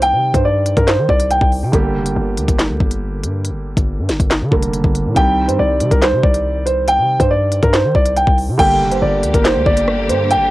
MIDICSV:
0, 0, Header, 1, 6, 480
1, 0, Start_track
1, 0, Key_signature, -2, "minor"
1, 0, Tempo, 428571
1, 21, Time_signature, 4, 2, 24, 8
1, 11767, End_track
2, 0, Start_track
2, 0, Title_t, "Grand piano"
2, 0, Program_c, 0, 0
2, 25, Note_on_c, 0, 79, 105
2, 362, Note_off_c, 0, 79, 0
2, 379, Note_on_c, 0, 72, 81
2, 490, Note_off_c, 0, 72, 0
2, 504, Note_on_c, 0, 74, 85
2, 841, Note_off_c, 0, 74, 0
2, 861, Note_on_c, 0, 70, 86
2, 971, Note_off_c, 0, 70, 0
2, 977, Note_on_c, 0, 72, 86
2, 1198, Note_off_c, 0, 72, 0
2, 1228, Note_on_c, 0, 74, 84
2, 1444, Note_off_c, 0, 74, 0
2, 1462, Note_on_c, 0, 79, 80
2, 1681, Note_off_c, 0, 79, 0
2, 5781, Note_on_c, 0, 79, 104
2, 6120, Note_off_c, 0, 79, 0
2, 6138, Note_on_c, 0, 72, 70
2, 6249, Note_off_c, 0, 72, 0
2, 6264, Note_on_c, 0, 74, 83
2, 6601, Note_off_c, 0, 74, 0
2, 6623, Note_on_c, 0, 70, 80
2, 6732, Note_off_c, 0, 70, 0
2, 6746, Note_on_c, 0, 72, 90
2, 6963, Note_off_c, 0, 72, 0
2, 6979, Note_on_c, 0, 74, 78
2, 7432, Note_off_c, 0, 74, 0
2, 7456, Note_on_c, 0, 72, 71
2, 7678, Note_off_c, 0, 72, 0
2, 7706, Note_on_c, 0, 79, 108
2, 8043, Note_off_c, 0, 79, 0
2, 8061, Note_on_c, 0, 72, 83
2, 8171, Note_off_c, 0, 72, 0
2, 8184, Note_on_c, 0, 74, 84
2, 8521, Note_off_c, 0, 74, 0
2, 8541, Note_on_c, 0, 70, 84
2, 8651, Note_off_c, 0, 70, 0
2, 8657, Note_on_c, 0, 72, 87
2, 8878, Note_off_c, 0, 72, 0
2, 8907, Note_on_c, 0, 74, 84
2, 9124, Note_off_c, 0, 74, 0
2, 9145, Note_on_c, 0, 79, 80
2, 9363, Note_off_c, 0, 79, 0
2, 9621, Note_on_c, 0, 79, 115
2, 9960, Note_off_c, 0, 79, 0
2, 9985, Note_on_c, 0, 72, 70
2, 10093, Note_off_c, 0, 72, 0
2, 10101, Note_on_c, 0, 74, 88
2, 10440, Note_off_c, 0, 74, 0
2, 10463, Note_on_c, 0, 70, 82
2, 10572, Note_off_c, 0, 70, 0
2, 10577, Note_on_c, 0, 72, 83
2, 10798, Note_off_c, 0, 72, 0
2, 10819, Note_on_c, 0, 74, 89
2, 11271, Note_off_c, 0, 74, 0
2, 11303, Note_on_c, 0, 72, 74
2, 11522, Note_off_c, 0, 72, 0
2, 11544, Note_on_c, 0, 79, 100
2, 11767, Note_off_c, 0, 79, 0
2, 11767, End_track
3, 0, Start_track
3, 0, Title_t, "Felt piano"
3, 0, Program_c, 1, 0
3, 0, Control_c, 1, 64, 127
3, 0, Note_on_c, 1, 51, 66
3, 0, Note_on_c, 1, 55, 62
3, 0, Note_on_c, 1, 60, 59
3, 0, Note_on_c, 1, 67, 74
3, 1888, Note_off_c, 1, 51, 0
3, 1893, Note_off_c, 1, 55, 0
3, 1898, Note_off_c, 1, 60, 0
3, 1902, Note_off_c, 1, 67, 0
3, 1927, Note_on_c, 1, 50, 63
3, 1936, Note_on_c, 1, 55, 56
3, 1945, Note_on_c, 1, 58, 65
3, 1954, Note_on_c, 1, 67, 75
3, 1956, Control_c, 1, 64, 0
3, 2144, Control_c, 1, 64, 127
3, 5010, Note_off_c, 1, 50, 0
3, 5014, Note_off_c, 1, 55, 0
3, 5019, Note_off_c, 1, 58, 0
3, 5023, Note_off_c, 1, 67, 0
3, 5056, Note_on_c, 1, 50, 53
3, 5060, Note_on_c, 1, 55, 46
3, 5065, Note_on_c, 1, 58, 48
3, 5069, Note_on_c, 1, 70, 57
3, 5757, Note_off_c, 1, 55, 0
3, 5764, Note_on_c, 1, 51, 66
3, 5773, Note_on_c, 1, 55, 62
3, 5779, Note_off_c, 1, 50, 0
3, 5782, Note_on_c, 1, 60, 60
3, 5783, Note_off_c, 1, 58, 0
3, 5785, Note_off_c, 1, 70, 0
3, 5791, Note_on_c, 1, 67, 73
3, 5797, Control_c, 1, 64, 0
3, 6017, Control_c, 1, 64, 127
3, 9568, Note_off_c, 1, 51, 0
3, 9573, Note_off_c, 1, 55, 0
3, 9577, Note_off_c, 1, 60, 0
3, 9582, Note_off_c, 1, 67, 0
3, 9607, Note_on_c, 1, 50, 65
3, 9616, Note_on_c, 1, 55, 59
3, 9625, Note_on_c, 1, 58, 67
3, 9634, Note_on_c, 1, 67, 74
3, 9637, Control_c, 1, 64, 0
3, 9838, Control_c, 1, 64, 127
3, 11767, Note_off_c, 1, 50, 0
3, 11767, Note_off_c, 1, 55, 0
3, 11767, Note_off_c, 1, 58, 0
3, 11767, Note_off_c, 1, 67, 0
3, 11767, End_track
4, 0, Start_track
4, 0, Title_t, "String section"
4, 0, Program_c, 2, 48
4, 9622, Note_on_c, 2, 50, 81
4, 9622, Note_on_c, 2, 55, 72
4, 9622, Note_on_c, 2, 58, 74
4, 9622, Note_on_c, 2, 67, 87
4, 11767, Note_off_c, 2, 50, 0
4, 11767, Note_off_c, 2, 55, 0
4, 11767, Note_off_c, 2, 58, 0
4, 11767, Note_off_c, 2, 67, 0
4, 11767, End_track
5, 0, Start_track
5, 0, Title_t, "808-style bass"
5, 0, Program_c, 3, 38
5, 0, Note_on_c, 3, 36, 108
5, 141, Note_on_c, 3, 48, 101
5, 158, Note_off_c, 3, 36, 0
5, 369, Note_off_c, 3, 48, 0
5, 381, Note_on_c, 3, 43, 103
5, 842, Note_off_c, 3, 43, 0
5, 861, Note_on_c, 3, 43, 108
5, 1101, Note_on_c, 3, 51, 97
5, 1118, Note_off_c, 3, 43, 0
5, 1216, Note_off_c, 3, 51, 0
5, 1221, Note_on_c, 3, 36, 107
5, 1567, Note_off_c, 3, 36, 0
5, 1582, Note_on_c, 3, 36, 108
5, 1821, Note_on_c, 3, 48, 98
5, 1838, Note_off_c, 3, 36, 0
5, 1935, Note_off_c, 3, 48, 0
5, 1942, Note_on_c, 3, 31, 104
5, 2182, Note_on_c, 3, 29, 98
5, 2199, Note_off_c, 3, 31, 0
5, 2302, Note_on_c, 3, 31, 96
5, 2319, Note_off_c, 3, 29, 0
5, 2416, Note_off_c, 3, 31, 0
5, 2422, Note_on_c, 3, 31, 108
5, 2662, Note_on_c, 3, 38, 100
5, 2679, Note_off_c, 3, 31, 0
5, 2776, Note_off_c, 3, 38, 0
5, 2781, Note_on_c, 3, 31, 109
5, 3022, Note_on_c, 3, 38, 97
5, 3039, Note_off_c, 3, 31, 0
5, 3136, Note_off_c, 3, 38, 0
5, 3141, Note_on_c, 3, 31, 108
5, 3622, Note_on_c, 3, 43, 99
5, 3639, Note_off_c, 3, 31, 0
5, 3922, Note_on_c, 3, 31, 94
5, 3939, Note_off_c, 3, 43, 0
5, 4207, Note_off_c, 3, 31, 0
5, 4222, Note_on_c, 3, 31, 108
5, 4462, Note_on_c, 3, 43, 100
5, 4479, Note_off_c, 3, 31, 0
5, 4582, Note_on_c, 3, 31, 100
5, 4599, Note_off_c, 3, 43, 0
5, 4696, Note_off_c, 3, 31, 0
5, 4701, Note_on_c, 3, 31, 108
5, 4942, Note_on_c, 3, 50, 95
5, 4959, Note_off_c, 3, 31, 0
5, 5056, Note_off_c, 3, 50, 0
5, 5061, Note_on_c, 3, 29, 107
5, 5407, Note_off_c, 3, 29, 0
5, 5422, Note_on_c, 3, 31, 110
5, 5662, Note_on_c, 3, 46, 97
5, 5679, Note_off_c, 3, 31, 0
5, 5776, Note_off_c, 3, 46, 0
5, 5782, Note_on_c, 3, 36, 106
5, 6142, Note_on_c, 3, 43, 98
5, 6159, Note_off_c, 3, 36, 0
5, 6256, Note_off_c, 3, 43, 0
5, 6262, Note_on_c, 3, 36, 105
5, 6502, Note_on_c, 3, 48, 99
5, 6519, Note_off_c, 3, 36, 0
5, 6616, Note_off_c, 3, 48, 0
5, 6621, Note_on_c, 3, 36, 108
5, 6861, Note_on_c, 3, 48, 98
5, 6878, Note_off_c, 3, 36, 0
5, 6976, Note_off_c, 3, 48, 0
5, 6981, Note_on_c, 3, 36, 107
5, 7822, Note_on_c, 3, 48, 99
5, 7839, Note_off_c, 3, 36, 0
5, 8050, Note_off_c, 3, 48, 0
5, 8061, Note_on_c, 3, 43, 101
5, 8522, Note_off_c, 3, 43, 0
5, 8541, Note_on_c, 3, 43, 107
5, 8782, Note_on_c, 3, 51, 97
5, 8798, Note_off_c, 3, 43, 0
5, 8896, Note_off_c, 3, 51, 0
5, 8901, Note_on_c, 3, 36, 108
5, 9247, Note_off_c, 3, 36, 0
5, 9262, Note_on_c, 3, 36, 110
5, 9502, Note_on_c, 3, 48, 96
5, 9519, Note_off_c, 3, 36, 0
5, 9616, Note_off_c, 3, 48, 0
5, 9622, Note_on_c, 3, 31, 103
5, 9862, Note_on_c, 3, 29, 101
5, 9879, Note_off_c, 3, 31, 0
5, 9982, Note_on_c, 3, 31, 100
5, 9999, Note_off_c, 3, 29, 0
5, 10096, Note_off_c, 3, 31, 0
5, 10102, Note_on_c, 3, 31, 106
5, 10342, Note_on_c, 3, 38, 102
5, 10359, Note_off_c, 3, 31, 0
5, 10456, Note_off_c, 3, 38, 0
5, 10461, Note_on_c, 3, 31, 105
5, 10702, Note_on_c, 3, 38, 100
5, 10719, Note_off_c, 3, 31, 0
5, 10816, Note_off_c, 3, 38, 0
5, 10821, Note_on_c, 3, 31, 108
5, 11302, Note_on_c, 3, 43, 101
5, 11319, Note_off_c, 3, 31, 0
5, 11602, Note_on_c, 3, 31, 99
5, 11619, Note_off_c, 3, 43, 0
5, 11767, Note_off_c, 3, 31, 0
5, 11767, End_track
6, 0, Start_track
6, 0, Title_t, "Drums"
6, 21, Note_on_c, 9, 42, 76
6, 133, Note_off_c, 9, 42, 0
6, 381, Note_on_c, 9, 36, 90
6, 385, Note_on_c, 9, 42, 70
6, 493, Note_off_c, 9, 36, 0
6, 497, Note_off_c, 9, 42, 0
6, 739, Note_on_c, 9, 42, 78
6, 851, Note_off_c, 9, 42, 0
6, 861, Note_on_c, 9, 36, 98
6, 861, Note_on_c, 9, 42, 46
6, 973, Note_off_c, 9, 36, 0
6, 973, Note_off_c, 9, 42, 0
6, 981, Note_on_c, 9, 42, 73
6, 982, Note_on_c, 9, 38, 120
6, 986, Note_on_c, 9, 39, 90
6, 1093, Note_off_c, 9, 42, 0
6, 1094, Note_off_c, 9, 38, 0
6, 1098, Note_off_c, 9, 39, 0
6, 1221, Note_on_c, 9, 36, 96
6, 1333, Note_off_c, 9, 36, 0
6, 1341, Note_on_c, 9, 42, 86
6, 1453, Note_off_c, 9, 42, 0
6, 1463, Note_on_c, 9, 42, 64
6, 1575, Note_off_c, 9, 42, 0
6, 1582, Note_on_c, 9, 36, 93
6, 1694, Note_off_c, 9, 36, 0
6, 1704, Note_on_c, 9, 46, 57
6, 1816, Note_off_c, 9, 46, 0
6, 1941, Note_on_c, 9, 42, 74
6, 1942, Note_on_c, 9, 36, 109
6, 2053, Note_off_c, 9, 42, 0
6, 2054, Note_off_c, 9, 36, 0
6, 2305, Note_on_c, 9, 42, 70
6, 2417, Note_off_c, 9, 42, 0
6, 2660, Note_on_c, 9, 42, 80
6, 2772, Note_off_c, 9, 42, 0
6, 2781, Note_on_c, 9, 36, 101
6, 2783, Note_on_c, 9, 42, 71
6, 2893, Note_off_c, 9, 36, 0
6, 2895, Note_off_c, 9, 42, 0
6, 2902, Note_on_c, 9, 38, 117
6, 2906, Note_on_c, 9, 42, 79
6, 2907, Note_on_c, 9, 39, 93
6, 3014, Note_off_c, 9, 38, 0
6, 3018, Note_off_c, 9, 42, 0
6, 3019, Note_off_c, 9, 39, 0
6, 3141, Note_on_c, 9, 36, 95
6, 3253, Note_off_c, 9, 36, 0
6, 3261, Note_on_c, 9, 42, 86
6, 3373, Note_off_c, 9, 42, 0
6, 3625, Note_on_c, 9, 42, 81
6, 3737, Note_off_c, 9, 42, 0
6, 3862, Note_on_c, 9, 42, 74
6, 3974, Note_off_c, 9, 42, 0
6, 4222, Note_on_c, 9, 36, 88
6, 4226, Note_on_c, 9, 42, 69
6, 4334, Note_off_c, 9, 36, 0
6, 4338, Note_off_c, 9, 42, 0
6, 4580, Note_on_c, 9, 42, 76
6, 4583, Note_on_c, 9, 38, 68
6, 4692, Note_off_c, 9, 42, 0
6, 4695, Note_off_c, 9, 38, 0
6, 4701, Note_on_c, 9, 36, 97
6, 4704, Note_on_c, 9, 42, 72
6, 4813, Note_off_c, 9, 36, 0
6, 4816, Note_off_c, 9, 42, 0
6, 4823, Note_on_c, 9, 38, 118
6, 4826, Note_on_c, 9, 42, 81
6, 4828, Note_on_c, 9, 39, 94
6, 4935, Note_off_c, 9, 38, 0
6, 4938, Note_off_c, 9, 42, 0
6, 4940, Note_off_c, 9, 39, 0
6, 5061, Note_on_c, 9, 36, 95
6, 5173, Note_off_c, 9, 36, 0
6, 5181, Note_on_c, 9, 42, 85
6, 5293, Note_off_c, 9, 42, 0
6, 5304, Note_on_c, 9, 42, 65
6, 5416, Note_off_c, 9, 42, 0
6, 5422, Note_on_c, 9, 36, 96
6, 5534, Note_off_c, 9, 36, 0
6, 5545, Note_on_c, 9, 42, 83
6, 5657, Note_off_c, 9, 42, 0
6, 5781, Note_on_c, 9, 42, 74
6, 5782, Note_on_c, 9, 36, 108
6, 5893, Note_off_c, 9, 42, 0
6, 5894, Note_off_c, 9, 36, 0
6, 6146, Note_on_c, 9, 42, 69
6, 6258, Note_off_c, 9, 42, 0
6, 6499, Note_on_c, 9, 42, 80
6, 6611, Note_off_c, 9, 42, 0
6, 6621, Note_on_c, 9, 36, 97
6, 6623, Note_on_c, 9, 42, 73
6, 6733, Note_off_c, 9, 36, 0
6, 6735, Note_off_c, 9, 42, 0
6, 6742, Note_on_c, 9, 38, 115
6, 6746, Note_on_c, 9, 42, 80
6, 6747, Note_on_c, 9, 39, 93
6, 6854, Note_off_c, 9, 38, 0
6, 6858, Note_off_c, 9, 42, 0
6, 6859, Note_off_c, 9, 39, 0
6, 6981, Note_on_c, 9, 36, 97
6, 7093, Note_off_c, 9, 36, 0
6, 7101, Note_on_c, 9, 42, 86
6, 7213, Note_off_c, 9, 42, 0
6, 7465, Note_on_c, 9, 42, 78
6, 7577, Note_off_c, 9, 42, 0
6, 7701, Note_on_c, 9, 42, 77
6, 7813, Note_off_c, 9, 42, 0
6, 8062, Note_on_c, 9, 36, 89
6, 8066, Note_on_c, 9, 42, 70
6, 8174, Note_off_c, 9, 36, 0
6, 8178, Note_off_c, 9, 42, 0
6, 8419, Note_on_c, 9, 42, 75
6, 8531, Note_off_c, 9, 42, 0
6, 8541, Note_on_c, 9, 36, 98
6, 8542, Note_on_c, 9, 42, 44
6, 8653, Note_off_c, 9, 36, 0
6, 8654, Note_off_c, 9, 42, 0
6, 8662, Note_on_c, 9, 38, 117
6, 8662, Note_on_c, 9, 42, 73
6, 8667, Note_on_c, 9, 39, 95
6, 8774, Note_off_c, 9, 38, 0
6, 8774, Note_off_c, 9, 42, 0
6, 8779, Note_off_c, 9, 39, 0
6, 8901, Note_on_c, 9, 36, 99
6, 9013, Note_off_c, 9, 36, 0
6, 9021, Note_on_c, 9, 42, 84
6, 9133, Note_off_c, 9, 42, 0
6, 9144, Note_on_c, 9, 42, 63
6, 9256, Note_off_c, 9, 42, 0
6, 9262, Note_on_c, 9, 36, 97
6, 9374, Note_off_c, 9, 36, 0
6, 9385, Note_on_c, 9, 46, 58
6, 9497, Note_off_c, 9, 46, 0
6, 9621, Note_on_c, 9, 42, 77
6, 9622, Note_on_c, 9, 36, 112
6, 9622, Note_on_c, 9, 49, 103
6, 9733, Note_off_c, 9, 42, 0
6, 9734, Note_off_c, 9, 36, 0
6, 9734, Note_off_c, 9, 49, 0
6, 9985, Note_on_c, 9, 42, 70
6, 10097, Note_off_c, 9, 42, 0
6, 10339, Note_on_c, 9, 42, 81
6, 10451, Note_off_c, 9, 42, 0
6, 10461, Note_on_c, 9, 36, 99
6, 10463, Note_on_c, 9, 42, 74
6, 10573, Note_off_c, 9, 36, 0
6, 10575, Note_off_c, 9, 42, 0
6, 10582, Note_on_c, 9, 38, 120
6, 10585, Note_on_c, 9, 42, 82
6, 10586, Note_on_c, 9, 39, 96
6, 10694, Note_off_c, 9, 38, 0
6, 10697, Note_off_c, 9, 42, 0
6, 10698, Note_off_c, 9, 39, 0
6, 10821, Note_on_c, 9, 36, 100
6, 10933, Note_off_c, 9, 36, 0
6, 10941, Note_on_c, 9, 42, 89
6, 11053, Note_off_c, 9, 42, 0
6, 11062, Note_on_c, 9, 37, 93
6, 11174, Note_off_c, 9, 37, 0
6, 11305, Note_on_c, 9, 42, 84
6, 11417, Note_off_c, 9, 42, 0
6, 11541, Note_on_c, 9, 42, 77
6, 11653, Note_off_c, 9, 42, 0
6, 11767, End_track
0, 0, End_of_file